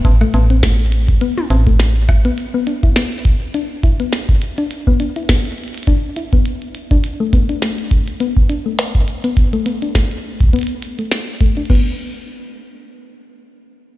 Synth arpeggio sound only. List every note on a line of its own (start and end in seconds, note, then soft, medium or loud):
0.21 0.32 A3 loud
0.34 0.43 B3 medium
0.50 0.57 C4 medium
0.63 0.72 A3 medium
1.21 1.35 B3 loud
1.50 1.60 C4 medium
1.67 1.74 A3 medium
2.25 2.32 B3 loud
2.54 2.65 B3 loud
2.67 2.76 D4 medium
2.83 2.91 E4 medium
2.96 3.05 B3 medium
3.54 3.68 D4 medium
3.83 3.93 E4 medium
4.00 4.07 B3 medium
4.58 4.65 D4 loud
4.87 4.98 B3 loud
5.00 5.09 D4 medium
5.16 5.23 E4 medium
5.29 5.38 B3 medium
5.87 6.01 D4 loud
6.17 6.26 E4 medium
6.33 6.40 B3 medium
6.91 6.98 D4 loud
7.20 7.31 A3 loud
7.33 7.42 B3 medium
7.49 7.57 D4 medium
7.62 7.71 A3 medium
8.20 8.34 B3 loud
8.49 8.59 D4 medium
8.66 8.73 A3 medium
9.24 9.31 B3 loud
9.53 9.64 A3 loud
9.66 9.75 B3 medium
9.82 9.90 D4 medium
9.95 10.04 A3 medium
10.53 10.67 B3 loud
10.99 11.10 A3 medium
11.41 11.55 A3 medium
11.57 11.61 D4 medium
11.70 11.97 B3 medium